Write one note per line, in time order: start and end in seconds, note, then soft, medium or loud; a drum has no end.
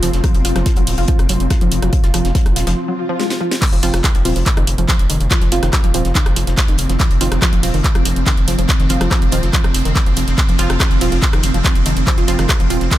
0.00 0.11 F1 loud
0.00 2.77 F3 medium
0.00 0.06 F3 loud
0.00 2.77 C4 medium
0.00 2.77 F4 medium
0.00 2.77 F5 medium
0.00 2.77 C6 medium
0.00 closed hi-hat medium
0.00 open hi-hat loud
0.13 0.21 F1 medium
0.13 snare medium
0.13 closed hi-hat soft
0.24 0.30 F#3 medium
0.24 kick loud
0.24 cross-stick medium
0.24 closed hi-hat medium
0.34 0.42 F1 medium
0.34 closed hi-hat soft
0.45 0.53 F1 medium
0.45 0.51 F4 medium
0.45 closed hi-hat medium
0.45 open hi-hat loud
0.55 0.63 F1 medium
0.55 0.59 F3 loud
0.55 cross-stick medium
0.55 snare soft
0.55 closed hi-hat medium
0.66 kick loud
0.66 snare loud
0.66 closed hi-hat medium
0.76 0.84 F1 medium
0.76 0.83 F#3 medium
0.76 closed hi-hat soft
0.87 0.95 D#1 loud
0.87 open hi-hat medium
0.87 open hi-hat loud
0.98 1.06 F1 loud
0.98 1.04 F4 medium
0.98 closed hi-hat medium
1.08 1.12 F3 loud
1.08 kick loud
1.08 closed hi-hat medium
1.19 1.27 F1 medium
1.19 cross-stick medium
1.19 closed hi-hat medium
1.29 1.37 F1 loud
1.29 1.36 F#3 medium
1.29 closed hi-hat medium
1.29 open hi-hat loud
1.40 1.48 F1 medium
1.40 closed hi-hat medium
1.50 1.57 F4 medium
1.50 kick loud
1.50 cross-stick medium
1.50 snare loud
1.50 closed hi-hat medium
1.61 1.69 F1 medium
1.61 1.65 F3 loud
1.61 closed hi-hat medium
1.71 1.80 F1 loud
1.71 closed hi-hat medium
1.71 open hi-hat loud
1.82 1.90 F1 medium
1.82 1.88 F#3 medium
1.82 cross-stick medium
1.82 closed hi-hat soft
1.93 kick loud
1.93 closed hi-hat medium
2.04 2.11 F1 medium
2.04 2.10 F4 medium
2.04 snare soft
2.04 closed hi-hat medium
2.14 2.22 F1 loud
2.14 2.18 F3 loud
2.14 cross-stick medium
2.14 closed hi-hat medium
2.14 open hi-hat loud
2.25 2.32 F1 medium
2.25 snare medium
2.25 closed hi-hat medium
2.35 2.41 F#3 medium
2.35 kick loud
2.35 snare loud
2.35 closed hi-hat medium
2.46 2.53 F1 medium
2.46 cross-stick medium
2.46 closed hi-hat medium
2.56 2.64 D#1 loud
2.56 2.62 F4 medium
2.56 snare loud
2.56 closed hi-hat medium
2.56 open hi-hat loud
2.67 2.74 F1 medium
2.67 2.71 F3 loud
2.67 snare loud
2.67 closed hi-hat medium
2.77 swell medium
2.88 2.94 F#3 medium
3.09 3.15 F3 loud
3.19 3.23 G#3 medium
3.19 snare medium
3.30 snare medium
3.41 3.47 F3 loud
3.51 snare medium
3.62 12.98 F3 medium
3.62 12.98 C4 medium
3.62 kick loud
3.62 clap loud
3.62 closed hi-hat medium
3.62 crash medium
3.73 3.80 F1 medium
3.73 3.79 F3 medium
3.73 closed hi-hat medium
3.73 closed hi-hat soft
3.83 3.91 F1 medium
3.83 3.89 F3 medium
3.83 3.98 F3 loud
3.83 3.98 C4 medium
3.83 3.98 F4 loud
3.83 closed hi-hat medium
3.83 open hi-hat loud
3.94 4.01 F1 loud
3.94 cross-stick medium
3.94 snare soft
3.94 closed hi-hat medium
4.04 4.08 D#3 medium
4.04 kick loud
4.04 cross-stick medium
4.04 snare loud
4.04 clap loud
4.04 closed hi-hat medium
4.15 4.22 F1 medium
4.15 closed hi-hat medium
4.15 closed hi-hat soft
4.25 4.33 D#1 loud
4.25 4.31 F3 medium
4.25 4.41 F3 medium
4.25 4.41 C4 medium
4.25 4.41 F4 medium
4.25 open hi-hat loud
4.25 open hi-hat medium
4.36 4.44 F1 loud
4.36 4.42 F3 medium
4.36 snare soft
4.36 closed hi-hat medium
4.46 kick loud
4.46 clap loud
4.46 closed hi-hat medium
4.57 4.65 F1 medium
4.57 4.61 D#3 medium
4.57 cross-stick medium
4.57 closed hi-hat medium
4.67 4.75 F1 loud
4.67 closed hi-hat medium
4.67 open hi-hat loud
4.78 4.86 F1 medium
4.78 4.84 F3 medium
4.78 closed hi-hat medium
4.89 4.95 F3 medium
4.89 kick loud
4.89 snare loud
4.89 clap loud
4.89 closed hi-hat medium
4.89 closed hi-hat loud
4.99 5.07 F1 medium
4.99 closed hi-hat medium
5.10 5.18 F1 loud
5.10 5.13 D#3 medium
5.10 closed hi-hat medium
5.10 open hi-hat loud
5.20 5.28 F1 loud
5.20 closed hi-hat medium
5.30 5.37 F3 medium
5.30 kick loud
5.30 clap loud
5.30 closed hi-hat medium
5.41 5.49 F1 medium
5.41 5.48 F3 medium
5.41 snare soft
5.41 closed hi-hat medium
5.52 5.60 F1 loud
5.52 5.67 F3 medium
5.52 5.67 C4 medium
5.52 5.67 F4 loud
5.52 closed hi-hat medium
5.52 open hi-hat loud
5.63 5.70 F1 loud
5.63 5.66 D#3 medium
5.63 cross-stick medium
5.63 snare medium
5.63 closed hi-hat medium
5.73 kick loud
5.73 cross-stick medium
5.73 snare loud
5.73 clap loud
5.73 closed hi-hat loud
5.73 closed hi-hat medium
5.84 5.91 F1 medium
5.84 5.90 F3 medium
5.84 closed hi-hat medium
5.94 6.02 D#1 loud
5.94 6.10 F3 medium
5.94 6.00 F3 medium
5.94 6.10 C4 medium
5.94 6.10 F4 medium
5.94 closed hi-hat medium
5.94 open hi-hat loud
6.05 6.13 F1 medium
6.05 snare soft
6.05 closed hi-hat medium
6.15 6.19 D#3 medium
6.15 kick loud
6.15 clap loud
6.15 closed hi-hat medium
6.26 6.34 F1 medium
6.26 cross-stick medium
6.26 closed hi-hat medium
6.36 6.44 F1 loud
6.36 6.43 F3 medium
6.36 closed hi-hat medium
6.36 open hi-hat loud
6.47 6.55 F1 medium
6.47 6.53 F3 medium
6.47 snare soft
6.47 closed hi-hat medium
6.58 kick loud
6.58 snare loud
6.58 clap loud
6.58 closed hi-hat medium
6.68 6.76 F1 medium
6.68 6.72 D#3 medium
6.68 closed hi-hat medium
6.78 6.87 F1 loud
6.78 closed hi-hat medium
6.78 open hi-hat loud
6.89 6.97 F1 medium
6.89 6.95 F3 medium
6.89 snare soft
6.89 closed hi-hat medium
7.00 7.06 F3 medium
7.00 kick loud
7.00 clap loud
7.00 closed hi-hat loud
7.00 closed hi-hat medium
7.11 7.18 F1 medium
7.11 closed hi-hat medium
7.11 closed hi-hat soft
7.21 7.29 F1 medium
7.21 7.25 D#3 medium
7.21 7.36 F3 loud
7.21 7.36 C4 medium
7.21 7.36 F4 loud
7.21 closed hi-hat medium
7.21 open hi-hat loud
7.32 7.39 F1 medium
7.32 cross-stick medium
7.32 snare soft
7.32 closed hi-hat medium
7.42 7.48 F3 medium
7.42 kick loud
7.42 cross-stick medium
7.42 snare loud
7.42 clap loud
7.42 closed hi-hat medium
7.53 7.60 F1 medium
7.53 7.59 F3 medium
7.53 closed hi-hat soft
7.53 closed hi-hat medium
7.63 7.71 D#1 loud
7.63 7.79 F3 medium
7.63 7.79 C4 medium
7.63 7.79 F4 medium
7.63 open hi-hat loud
7.63 open hi-hat medium
7.74 7.82 F1 medium
7.74 7.78 D#3 medium
7.74 snare soft
7.74 closed hi-hat medium
7.84 kick loud
7.84 clap loud
7.84 closed hi-hat medium
7.95 8.03 F1 medium
7.95 8.01 F3 medium
7.95 cross-stick medium
7.95 closed hi-hat medium
8.05 8.13 F1 loud
8.05 8.12 F3 medium
8.05 closed hi-hat medium
8.05 open hi-hat loud
8.16 8.24 F1 medium
8.16 closed hi-hat medium
8.26 8.30 D#3 medium
8.26 kick loud
8.26 snare loud
8.26 clap loud
8.26 closed hi-hat loud
8.26 closed hi-hat medium
8.37 8.45 F1 medium
8.37 closed hi-hat medium
8.48 8.56 F1 loud
8.48 8.54 F3 medium
8.48 closed hi-hat medium
8.48 open hi-hat loud
8.59 8.66 F1 medium
8.59 8.64 F3 medium
8.59 closed hi-hat medium
8.69 kick loud
8.69 clap loud
8.69 closed hi-hat medium
8.80 8.87 F1 medium
8.80 8.83 D#3 medium
8.80 snare soft
8.80 closed hi-hat medium
8.89 8.98 F1 medium
8.89 9.05 F3 medium
8.89 9.05 C4 medium
8.89 9.05 F4 loud
8.89 closed hi-hat medium
8.89 open hi-hat loud
9.00 9.08 F1 medium
9.00 9.07 F3 medium
9.00 cross-stick loud
9.00 snare medium
9.00 closed hi-hat medium
9.11 9.17 F3 medium
9.11 kick loud
9.11 cross-stick loud
9.11 snare loud
9.11 clap loud
9.11 closed hi-hat medium
9.22 9.30 F1 medium
9.22 closed hi-hat soft
9.32 9.40 D#1 loud
9.32 9.36 D#3 medium
9.32 9.48 F3 medium
9.32 9.48 C4 medium
9.32 9.48 F4 loud
9.32 closed hi-hat medium
9.32 open hi-hat loud
9.43 9.51 F1 medium
9.43 snare soft
9.43 closed hi-hat medium
9.53 9.60 F3 medium
9.53 kick loud
9.53 clap loud
9.53 closed hi-hat medium
9.64 9.72 F1 medium
9.64 9.70 F3 medium
9.64 cross-stick medium
9.64 closed hi-hat medium
9.74 9.82 F1 loud
9.74 closed hi-hat medium
9.74 open hi-hat loud
9.85 9.93 F1 medium
9.85 9.89 D#3 medium
9.85 snare medium
9.85 closed hi-hat medium
9.95 kick loud
9.95 snare loud
9.95 clap loud
9.95 closed hi-hat medium
9.95 closed hi-hat loud
10.06 10.14 F#1 medium
10.06 10.12 F3 medium
10.06 closed hi-hat medium
10.16 10.25 F1 loud
10.16 10.23 F3 medium
10.16 closed hi-hat medium
10.16 open hi-hat loud
10.28 10.35 F1 medium
10.28 snare medium
10.28 closed hi-hat medium
10.38 kick loud
10.38 clap loud
10.38 closed hi-hat medium
10.49 10.56 F1 medium
10.49 10.55 F3 medium
10.49 closed hi-hat medium
10.49 closed hi-hat soft
10.59 10.67 F1 loud
10.59 10.74 F3 loud
10.59 10.74 C4 medium
10.59 10.74 F4 loud
10.59 10.65 F4 medium
10.59 closed hi-hat medium
10.59 open hi-hat loud
10.70 10.77 F1 loud
10.70 cross-stick loud
10.70 snare soft
10.70 closed hi-hat medium
10.80 10.84 D#3 medium
10.80 kick loud
10.80 cross-stick loud
10.80 snare loud
10.80 clap loud
10.80 closed hi-hat medium
10.91 10.99 F1 medium
10.91 closed hi-hat soft
11.01 11.09 D#1 loud
11.01 11.17 F3 medium
11.01 11.07 F3 medium
11.01 11.17 C4 medium
11.01 11.17 F4 medium
11.01 open hi-hat loud
11.01 open hi-hat medium
11.12 11.20 F1 medium
11.12 11.18 F4 medium
11.12 snare soft
11.12 closed hi-hat medium
11.22 kick loud
11.22 clap loud
11.22 closed hi-hat medium
11.33 11.41 F1 medium
11.33 11.37 D#3 medium
11.33 cross-stick loud
11.33 closed hi-hat medium
11.43 11.51 F1 loud
11.43 closed hi-hat medium
11.43 open hi-hat loud
11.54 11.62 F1 medium
11.54 11.60 F3 medium
11.54 closed hi-hat medium
11.64 11.71 F4 medium
11.64 kick loud
11.64 snare loud
11.64 clap loud
11.64 closed hi-hat medium
11.75 11.83 F1 medium
11.75 closed hi-hat medium
11.86 11.94 F1 loud
11.86 11.90 D#3 medium
11.86 closed hi-hat medium
11.86 open hi-hat loud
11.97 12.04 F1 medium
11.97 closed hi-hat medium
12.07 12.13 F3 medium
12.07 kick loud
12.07 clap loud
12.07 closed hi-hat medium
12.18 12.25 F1 medium
12.18 12.24 F4 medium
12.18 snare soft
12.18 closed hi-hat medium
12.28 12.36 F1 medium
12.28 12.43 F3 medium
12.28 12.43 C4 medium
12.28 12.43 F4 loud
12.28 closed hi-hat medium
12.28 open hi-hat loud
12.38 12.46 F1 loud
12.38 12.42 D#3 medium
12.38 cross-stick medium
12.38 snare medium
12.38 closed hi-hat medium
12.49 kick loud
12.49 cross-stick loud
12.49 snare loud
12.49 clap loud
12.49 closed hi-hat medium
12.60 12.68 F1 medium
12.60 12.66 F3 medium
12.60 closed hi-hat soft
12.70 12.78 D#1 loud
12.70 12.86 F3 medium
12.70 12.86 C4 medium
12.70 12.86 F4 medium
12.70 12.76 F4 medium
12.70 closed hi-hat medium
12.70 open hi-hat loud
12.81 12.89 F1 medium
12.81 snare soft
12.81 closed hi-hat medium
12.91 12.95 D#3 medium
12.91 kick loud
12.91 clap loud
12.91 closed hi-hat medium